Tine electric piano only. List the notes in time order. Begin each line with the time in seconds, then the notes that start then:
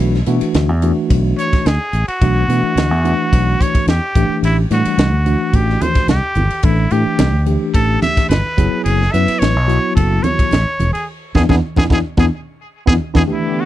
Already playing: E3 A3 D4 F#4
0.27 E3 A3 D4 F#4
0.82 E3 A3 D4 F#4
2.22 E3 A3 D4 F#4
2.49 E3 A3 D4 F#4
3.04 E3 A3 D4 F#4
4.16 E3 A3 D4 G4
4.71 E3 G3 A3 D4
5.26 E3 A3 D4 F#4
6.64 E3 A3 D4 A4
6.92 E3 A3 D4 G4
7.46 E3 A3 D4 G4
8.57 F#3 B3 E4 G#4
9.13 F#3 B3 E4 B4
9.68 F#3 B3 E4 F#4
11.35 B3 D4 E4
11.50 B3 D4 E4
11.76 B3 D4 E4
11.89 B3 D4 E4
12.17 B3 D4 E4
12.86 B3 D4 E4
13.14 B3 D4 E4
13.27 E3 A3 D4 G4